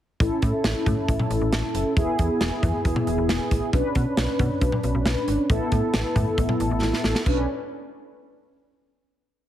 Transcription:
0.20 0.30 A1 loud
0.20 1.93 C#4 medium
0.20 1.93 E4 medium
0.20 1.93 A4 medium
0.20 kick loud
0.20 closed hi-hat medium
0.42 0.53 A2 medium
0.42 kick medium
0.42 closed hi-hat medium
0.64 0.74 A1 loud
0.64 snare loud
0.64 closed hi-hat medium
0.86 0.97 A2 loud
0.86 kick medium
0.86 closed hi-hat medium
0.86 mid tom medium
1.08 1.19 A1 loud
1.08 kick medium
1.08 closed hi-hat medium
1.19 mid tom medium
1.30 1.41 A1 loud
1.30 closed hi-hat medium
1.41 1.52 A1 medium
1.52 1.63 A1 loud
1.52 snare loud
1.52 closed hi-hat medium
1.75 1.85 F#1 medium
1.75 closed hi-hat medium
1.97 2.07 E1 loud
1.97 3.70 B3 medium
1.97 3.70 E4 medium
1.97 3.70 G#4 medium
1.97 kick loud
1.97 closed hi-hat medium
2.19 2.29 E2 loud
2.19 kick medium
2.19 closed hi-hat medium
2.41 2.51 E1 loud
2.41 snare loud
2.41 closed hi-hat medium
2.63 2.73 E2 loud
2.63 kick medium
2.63 closed hi-hat medium
2.63 mid tom medium
2.85 2.95 E1 loud
2.85 kick medium
2.85 closed hi-hat medium
2.96 mid tom medium
3.07 3.17 E1 loud
3.07 closed hi-hat medium
3.18 3.28 E1 loud
3.29 3.39 E1 medium
3.29 snare loud
3.29 closed hi-hat medium
3.51 3.61 A1 medium
3.51 kick medium
3.51 closed hi-hat medium
3.73 3.83 B1 loud
3.73 5.46 C#4 medium
3.73 5.46 D4 medium
3.73 5.46 B4 medium
3.73 kick loud
3.73 closed hi-hat medium
3.95 4.06 B2 medium
3.95 kick medium
3.95 closed hi-hat medium
4.17 4.27 B1 loud
4.17 snare loud
4.17 closed hi-hat medium
4.39 4.50 B2 loud
4.39 kick medium
4.39 closed hi-hat medium
4.39 mid tom medium
4.61 4.72 B1 loud
4.61 kick medium
4.61 closed hi-hat medium
4.72 mid tom medium
4.83 4.94 B1 medium
4.83 closed hi-hat medium
4.95 5.05 B1 loud
5.06 5.16 B1 loud
5.06 snare loud
5.06 closed hi-hat medium
5.28 5.38 G#1 medium
5.28 closed hi-hat medium
5.50 5.60 A1 loud
5.50 7.23 B3 medium
5.50 7.23 E4 medium
5.50 7.23 A4 medium
5.50 kick loud
5.50 closed hi-hat medium
5.72 5.82 A2 loud
5.72 kick medium
5.72 closed hi-hat medium
5.94 6.04 A1 loud
5.94 snare loud
5.94 closed hi-hat medium
6.16 6.26 A2 medium
6.16 kick medium
6.16 closed hi-hat medium
6.16 mid tom medium
6.38 6.48 A1 loud
6.38 kick medium
6.38 closed hi-hat medium
6.49 mid tom medium
6.60 6.70 A1 loud
6.60 closed hi-hat medium
6.71 6.81 A1 medium
6.82 6.92 A1 loud
6.82 snare medium
6.93 snare medium
7.04 7.14 A1 medium
7.04 snare medium
7.15 snare medium
7.26 7.47 B1 loud
7.26 7.47 C#4 medium
7.26 7.47 D4 medium
7.26 7.47 B4 medium
7.26 kick loud
7.26 crash medium

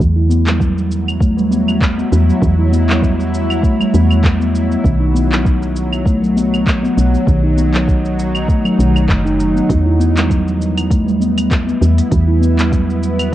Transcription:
0.00 2.03 E2 medium
0.00 0.15 E3 medium
0.00 4.83 F#3 medium
0.00 cabasa soft
0.16 0.29 E4 medium
0.27 0.46 B3 medium
0.27 4.85 E4 medium
0.27 cabasa medium
0.47 0.60 G3 medium
0.47 clap medium
0.47 cabasa soft
0.60 1.19 F#3 medium
0.60 kick medium
0.60 cabasa soft
0.78 cabasa soft
0.92 cabasa medium
1.08 cabasa soft
1.08 claves medium
1.21 1.36 A3 medium
1.21 kick medium
1.21 cabasa soft
1.37 1.50 G3 medium
1.37 cabasa soft
1.51 1.67 B3 medium
1.51 cabasa medium
1.68 cabasa soft
1.68 claves medium
1.81 kick loud
1.81 clap medium
1.81 cabasa soft
1.98 2.11 B3 medium
1.98 cabasa soft
2.12 2.31 E2 medium
2.12 cabasa medium
2.29 2.41 B3 medium
2.29 cabasa soft
2.42 3.65 E2 loud
2.42 2.57 E3 medium
2.42 kick loud
2.42 cabasa soft
2.59 2.71 E4 medium
2.72 2.88 B3 loud
2.72 cabasa medium
2.89 3.02 G3 medium
2.89 clap medium
2.89 cabasa soft
3.02 3.62 F#3 medium
3.02 kick loud
3.02 cabasa soft
3.20 cabasa soft
3.34 cabasa medium
3.50 cabasa soft
3.50 claves medium
3.63 3.83 B1 medium
3.63 3.78 A3 medium
3.63 kick medium
3.63 cabasa soft
3.80 3.92 G3 medium
3.80 cabasa soft
3.80 claves medium
3.93 4.76 E2 medium
3.93 4.09 B3 medium
3.93 cabasa medium
4.10 cabasa soft
4.10 claves medium
4.24 kick loud
4.24 clap medium
4.24 cabasa soft
4.40 4.53 B3 medium
4.40 cabasa soft
4.55 cabasa medium
4.71 4.83 B3 medium
4.71 cabasa soft
4.84 6.88 B1 loud
4.84 4.99 D#3 medium
4.84 9.69 F#3 medium
4.84 kick loud
4.84 cabasa soft
5.00 5.13 D#4 medium
5.14 5.30 B3 loud
5.14 cabasa medium
5.31 5.43 F#3 medium
5.31 clap medium
5.31 cabasa soft
5.44 6.04 F#3 medium
5.44 kick loud
5.44 cabasa soft
5.62 cabasa soft
5.76 cabasa medium
5.92 cabasa soft
5.92 claves medium
5.97 9.69 D#4 medium
6.05 6.20 A3 medium
6.05 kick medium
6.05 cabasa soft
6.22 6.34 F#3 loud
6.22 cabasa soft
6.36 6.52 B3 medium
6.36 cabasa medium
6.54 cabasa soft
6.54 claves medium
6.66 kick loud
6.66 clap medium
6.66 cabasa soft
6.83 6.96 B3 loud
6.83 cabasa soft
6.97 7.16 B1 medium
6.97 cabasa medium
7.13 7.26 B3 medium
7.13 cabasa soft
7.27 8.50 B1 loud
7.27 7.42 D#3 medium
7.27 kick loud
7.27 cabasa soft
7.43 7.56 D#4 medium
7.57 7.73 B3 medium
7.57 cabasa medium
7.74 7.87 F#3 medium
7.74 clap medium
7.74 cabasa soft
7.88 8.47 F#3 medium
7.88 kick loud
7.88 cabasa soft
8.05 cabasa soft
8.19 cabasa medium
8.35 cabasa soft
8.35 claves medium
8.48 8.68 A1 medium
8.48 8.63 A3 medium
8.48 kick loud
8.48 cabasa soft
8.64 8.77 F#3 medium
8.64 cabasa soft
8.64 claves medium
8.78 9.08 B1 medium
8.78 8.88 D#3 medium
8.78 cabasa medium
8.96 cabasa soft
8.96 claves medium
9.09 9.61 F#1 loud
9.09 kick loud
9.09 clap medium
9.09 cabasa soft
9.25 9.38 D#4 medium
9.25 cabasa soft
9.40 cabasa medium
9.55 9.68 B3 medium
9.55 cabasa soft
9.69 11.73 E2 loud
9.69 9.84 E3 medium
9.69 kick loud
9.69 open hi-hat soft
9.69 cabasa soft
9.76 13.35 B3 medium
9.86 9.98 E4 medium
9.99 10.15 B3 medium
9.99 cabasa medium
10.14 10.29 G3 medium
10.14 13.35 E4 medium
10.14 clap medium
10.14 open hi-hat medium
10.14 cabasa soft
10.19 13.35 B4 medium
10.29 10.89 F#3 medium
10.29 kick loud
10.29 open hi-hat soft
10.29 cabasa soft
10.48 cabasa soft
10.61 cabasa medium
10.77 open hi-hat soft
10.77 cabasa soft
10.77 claves medium
10.90 11.05 A3 medium
10.90 kick medium
10.90 open hi-hat soft
10.90 cabasa soft
11.06 11.19 G3 medium
11.06 cabasa soft
11.20 11.36 B3 medium
11.20 cabasa medium
11.31 13.35 F#4 medium
11.38 open hi-hat medium
11.38 cabasa soft
11.38 claves medium
11.51 kick loud
11.51 clap medium
11.51 open hi-hat soft
11.51 cabasa soft
11.67 11.80 B3 medium
11.67 cabasa soft
11.82 12.01 E2 medium
11.82 cabasa medium
11.97 12.10 B3 medium
11.97 open hi-hat soft
11.97 cabasa soft
12.11 13.34 E2 loud
12.11 12.26 E3 medium
12.11 kick loud
12.11 open hi-hat soft
12.11 cabasa soft
12.28 12.40 E4 medium
12.41 12.57 B3 loud
12.41 cabasa medium
12.58 12.71 G3 medium
12.58 clap medium
12.58 open hi-hat medium
12.58 cabasa soft
12.72 13.31 F#3 medium
12.72 kick medium
12.72 open hi-hat soft
12.72 cabasa soft
12.90 cabasa soft
13.03 cabasa medium
13.19 open hi-hat medium
13.19 cabasa soft
13.19 claves medium

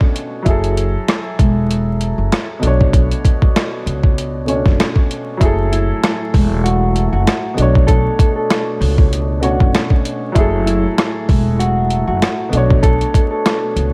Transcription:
0.00 0.44 B2 medium
0.00 0.45 A3 soft
0.00 0.47 C#4 soft
0.00 0.49 D4 soft
0.00 0.46 C#5 medium
0.00 kick medium
0.16 closed hi-hat medium
0.42 0.94 F#1 loud
0.42 2.57 F#3 medium
0.42 2.58 E4 medium
0.42 kick loud
0.42 closed hi-hat medium
0.48 2.59 G#4 medium
0.48 2.60 A4 medium
0.64 closed hi-hat medium
0.77 closed hi-hat medium
1.08 cross-stick medium
1.08 snare loud
1.08 closed hi-hat medium
1.39 2.14 E1 loud
1.39 kick medium
1.39 closed hi-hat medium
1.71 closed hi-hat medium
2.01 closed hi-hat medium
2.18 2.28 F#1 medium
2.32 cross-stick medium
2.32 snare loud
2.32 closed hi-hat medium
2.59 3.11 B1 medium
2.59 4.43 B2 medium
2.59 4.44 A3 medium
2.59 closed hi-hat medium
2.64 4.45 D4 medium
2.64 4.46 C#5 medium
2.81 kick medium
2.93 kick loud
2.93 closed hi-hat medium
3.11 closed hi-hat medium
3.25 kick loud
3.25 closed hi-hat medium
3.42 kick medium
3.56 cross-stick medium
3.56 snare loud
3.56 closed hi-hat medium
3.86 4.61 C#2 medium
3.86 closed hi-hat medium
4.03 kick medium
4.18 closed hi-hat medium
4.45 5.39 B2 soft
4.45 5.40 A3 soft
4.45 4.55 C#4 soft
4.45 5.41 C#5 medium
4.45 closed hi-hat medium
4.54 5.44 D4 soft
4.66 4.76 F#1 loud
4.66 kick medium
4.66 snare soft
4.80 cross-stick loud
4.80 snare loud
4.80 closed hi-hat medium
4.96 kick medium
5.11 closed hi-hat medium
5.37 5.89 F#1 loud
5.37 7.55 A2 medium
5.37 7.51 F#3 medium
5.37 7.55 A3 medium
5.37 7.53 E4 medium
5.37 7.55 E4 medium
5.37 kick loud
5.41 7.54 G#4 medium
5.41 7.55 A4 loud
5.41 closed hi-hat medium
5.72 6.17 E4 medium
5.72 closed hi-hat medium
6.04 cross-stick medium
6.04 snare loud
6.04 closed hi-hat medium
6.34 7.09 E1 loud
6.34 kick medium
6.34 open hi-hat soft
6.64 7.09 F#4 medium
6.64 closed hi-hat medium
6.96 closed hi-hat medium
7.12 7.23 F#1 medium
7.12 7.84 F#4 medium
7.27 cross-stick loud
7.27 snare loud
7.27 closed hi-hat medium
7.54 8.05 B1 medium
7.54 9.37 B2 medium
7.54 10.32 B2 medium
7.54 9.39 A3 medium
7.54 10.33 A3 medium
7.54 10.33 D4 medium
7.58 9.40 D4 medium
7.58 9.41 C#5 medium
7.58 closed hi-hat medium
7.75 kick medium
7.87 8.33 A4 loud
7.87 kick loud
7.87 closed hi-hat medium
8.19 kick loud
8.19 closed hi-hat medium
8.36 9.38 A4 medium
8.50 cross-stick medium
8.50 snare loud
8.50 closed hi-hat medium
8.80 9.56 C#2 medium
8.80 open hi-hat soft
8.98 kick loud
9.13 closed hi-hat medium
9.40 10.34 B2 medium
9.40 10.35 A3 soft
9.40 9.50 C#4 soft
9.40 9.70 F#4 medium
9.40 10.36 C#5 medium
9.40 closed hi-hat medium
9.49 10.39 D4 soft
9.60 9.71 F#1 loud
9.60 kick medium
9.75 cross-stick medium
9.75 snare loud
9.75 closed hi-hat medium
9.90 kick medium
10.05 closed hi-hat medium
10.32 10.84 F#1 loud
10.32 12.50 A2 medium
10.32 12.46 F#3 medium
10.32 12.50 A3 medium
10.32 12.48 E4 medium
10.32 12.50 E4 medium
10.32 kick loud
10.32 closed hi-hat medium
10.37 12.49 G#4 medium
10.37 12.50 A4 loud
10.66 11.12 E4 medium
10.66 closed hi-hat medium
10.98 cross-stick medium
10.98 snare loud
10.98 closed hi-hat medium
11.29 12.04 E1 loud
11.29 kick loud
11.29 open hi-hat soft
11.59 12.05 F#4 medium
11.59 closed hi-hat medium
11.90 closed hi-hat medium
12.07 12.18 F#1 medium
12.07 12.79 F#4 medium
12.22 cross-stick loud
12.22 snare loud
12.22 closed hi-hat medium
12.49 13.00 B1 medium
12.49 13.93 B2 medium
12.49 13.93 A3 medium
12.49 13.93 D4 medium
12.53 13.93 D4 medium
12.53 13.93 C#5 medium
12.53 closed hi-hat medium
12.70 kick medium
12.83 13.28 A4 loud
12.83 kick loud
12.83 closed hi-hat medium
13.01 closed hi-hat medium
13.14 kick loud
13.14 closed hi-hat medium
13.31 13.93 A4 medium
13.46 cross-stick medium
13.46 snare loud
13.46 closed hi-hat medium
13.76 13.93 C#2 medium
13.76 closed hi-hat medium

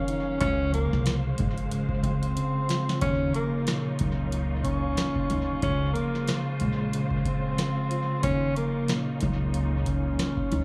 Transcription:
0.00 0.39 C#3 medium
0.00 0.39 D#3 medium
0.00 0.43 D#3 medium
0.00 0.41 F3 medium
0.00 0.41 F#3 medium
0.00 0.38 A#3 medium
0.00 0.37 C#4 medium
0.00 0.38 C#4 medium
0.00 0.40 C#4 medium
0.00 2.98 F5 medium
0.08 0.41 D#4 medium
0.08 closed hi-hat medium
0.40 0.84 C#2 loud
0.40 1.71 C#3 medium
0.40 2.99 F3 medium
0.40 2.99 G#3 medium
0.40 0.70 C#4 loud
0.40 2.99 C5 medium
0.40 kick loud
0.40 closed hi-hat loud
0.71 3.01 F3 medium
0.71 1.22 A#3 medium
0.71 closed hi-hat medium
0.93 1.31 C2 medium
0.93 snare soft
1.06 cross-stick medium
1.06 snare loud
1.06 closed hi-hat medium
1.38 1.67 G#1 medium
1.38 3.01 G#3 medium
1.38 kick loud
1.38 closed hi-hat medium
1.58 closed hi-hat medium
1.72 2.35 C#3 medium
1.72 closed hi-hat medium
1.89 kick medium
2.03 2.31 C#2 medium
2.03 2.97 C4 medium
2.03 3.02 C4 medium
2.03 kick medium
2.03 closed hi-hat medium
2.23 closed hi-hat medium
2.36 3.00 C#3 medium
2.36 closed hi-hat loud
2.69 3.02 F4 medium
2.69 snare loud
2.69 closed hi-hat medium
2.89 snare medium
3.01 3.29 D#2 loud
3.01 5.62 C#3 medium
3.01 5.60 C#3 medium
3.01 5.60 A#3 medium
3.01 5.60 C#4 medium
3.01 3.31 C#4 loud
3.01 5.60 D#4 medium
3.01 10.64 F4 medium
3.01 kick loud
3.01 closed hi-hat loud
3.34 5.63 F3 medium
3.34 3.83 A#3 medium
3.34 closed hi-hat medium
3.67 5.63 A#2 medium
3.67 cross-stick medium
3.67 snare loud
3.67 closed hi-hat medium
3.99 4.94 C#2 medium
3.99 5.63 F#3 medium
3.99 kick medium
3.99 closed hi-hat medium
4.32 closed hi-hat medium
4.64 5.58 C#4 medium
4.64 5.62 C#4 medium
4.64 kick medium
4.64 closed hi-hat medium
4.97 cross-stick medium
4.97 snare loud
4.97 closed hi-hat medium
5.15 kick loud
5.30 5.58 D2 medium
5.30 5.63 D#4 medium
5.30 closed hi-hat medium
5.62 5.90 C#2 loud
5.62 8.21 C#3 medium
5.62 6.27 C#3 medium
5.62 8.21 F3 medium
5.62 8.21 G#3 medium
5.62 5.92 C#4 loud
5.62 8.21 C5 medium
5.62 kick loud
5.62 closed hi-hat loud
5.93 8.23 F3 medium
5.93 6.43 A#3 medium
5.93 closed hi-hat medium
6.15 snare soft
6.28 6.93 C#3 medium
6.28 cross-stick medium
6.28 snare loud
6.28 closed hi-hat medium
6.60 7.55 A#1 medium
6.60 8.23 G#3 medium
6.60 closed hi-hat medium
6.93 7.57 C#3 medium
6.93 closed hi-hat medium
7.11 kick medium
7.25 8.24 C4 medium
7.25 8.21 C4 medium
7.25 kick medium
7.25 closed hi-hat medium
7.58 8.21 C#3 medium
7.58 cross-stick medium
7.58 snare loud
7.58 closed hi-hat loud
7.91 8.23 F4 medium
7.91 closed hi-hat medium
8.23 8.51 D#2 loud
8.23 10.64 C#3 medium
8.23 10.64 A#3 medium
8.23 8.53 C#4 loud
8.23 10.64 C#4 medium
8.23 10.64 D#4 medium
8.23 kick loud
8.23 closed hi-hat loud
8.56 10.64 F3 medium
8.56 9.05 A#3 medium
8.56 closed hi-hat medium
8.88 10.64 A#2 medium
8.88 cross-stick medium
8.88 snare loud
8.88 closed hi-hat medium
9.21 10.16 C#2 medium
9.21 10.64 F#3 medium
9.21 kick medium
9.21 closed hi-hat medium
9.54 closed hi-hat medium
9.86 10.64 C#4 medium
9.86 kick medium
9.86 closed hi-hat medium
10.19 cross-stick medium
10.19 snare loud
10.19 closed hi-hat medium
10.37 kick loud
10.52 10.64 D2 medium
10.52 10.64 D#4 medium
10.52 closed hi-hat medium

